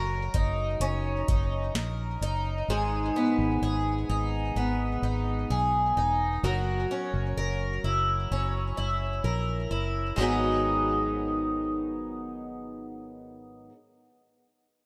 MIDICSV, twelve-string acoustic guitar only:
0, 0, Header, 1, 2, 480
1, 0, Start_track
1, 0, Key_signature, 5, "minor"
1, 0, Tempo, 937500
1, 1375, Time_signature, 4, 2, 24, 8
1, 7607, End_track
2, 0, Start_track
2, 0, Title_t, "Twelve-string acoustic guitar"
2, 0, Program_c, 0, 25
2, 0, Note_on_c, 0, 54, 68
2, 0, Note_on_c, 0, 61, 47
2, 0, Note_on_c, 0, 70, 65
2, 176, Note_on_c, 0, 63, 51
2, 410, Note_off_c, 0, 61, 0
2, 416, Note_on_c, 0, 61, 53
2, 656, Note_off_c, 0, 63, 0
2, 658, Note_on_c, 0, 63, 49
2, 892, Note_off_c, 0, 70, 0
2, 898, Note_on_c, 0, 70, 52
2, 1136, Note_off_c, 0, 63, 0
2, 1138, Note_on_c, 0, 63, 52
2, 1374, Note_off_c, 0, 54, 0
2, 1377, Note_off_c, 0, 70, 0
2, 1382, Note_on_c, 0, 44, 75
2, 1384, Note_on_c, 0, 68, 54
2, 1424, Note_off_c, 0, 61, 0
2, 1619, Note_on_c, 0, 59, 51
2, 1851, Note_off_c, 0, 68, 0
2, 1857, Note_on_c, 0, 68, 57
2, 2095, Note_off_c, 0, 63, 0
2, 2097, Note_on_c, 0, 63, 55
2, 2330, Note_off_c, 0, 59, 0
2, 2336, Note_on_c, 0, 59, 52
2, 2570, Note_off_c, 0, 63, 0
2, 2577, Note_on_c, 0, 63, 44
2, 2812, Note_off_c, 0, 68, 0
2, 2818, Note_on_c, 0, 68, 49
2, 3050, Note_off_c, 0, 63, 0
2, 3057, Note_on_c, 0, 63, 48
2, 3297, Note_off_c, 0, 68, 0
2, 3297, Note_on_c, 0, 54, 62
2, 3299, Note_off_c, 0, 44, 0
2, 3301, Note_on_c, 0, 70, 49
2, 3344, Note_off_c, 0, 59, 0
2, 3344, Note_off_c, 0, 63, 0
2, 3537, Note_on_c, 0, 61, 47
2, 3770, Note_off_c, 0, 70, 0
2, 3776, Note_on_c, 0, 70, 61
2, 4016, Note_on_c, 0, 64, 52
2, 4252, Note_off_c, 0, 61, 0
2, 4258, Note_on_c, 0, 61, 48
2, 4486, Note_off_c, 0, 64, 0
2, 4492, Note_on_c, 0, 64, 47
2, 4726, Note_off_c, 0, 70, 0
2, 4732, Note_on_c, 0, 70, 49
2, 4964, Note_off_c, 0, 64, 0
2, 4971, Note_on_c, 0, 64, 44
2, 5202, Note_on_c, 0, 44, 62
2, 5210, Note_on_c, 0, 51, 64
2, 5212, Note_off_c, 0, 54, 0
2, 5214, Note_on_c, 0, 54, 64
2, 5218, Note_off_c, 0, 61, 0
2, 5220, Note_on_c, 0, 59, 62
2, 5223, Note_off_c, 0, 64, 0
2, 5225, Note_on_c, 0, 63, 68
2, 5230, Note_off_c, 0, 70, 0
2, 5232, Note_on_c, 0, 68, 67
2, 7009, Note_off_c, 0, 44, 0
2, 7016, Note_off_c, 0, 51, 0
2, 7021, Note_off_c, 0, 54, 0
2, 7026, Note_off_c, 0, 59, 0
2, 7031, Note_off_c, 0, 63, 0
2, 7038, Note_off_c, 0, 68, 0
2, 7607, End_track
0, 0, End_of_file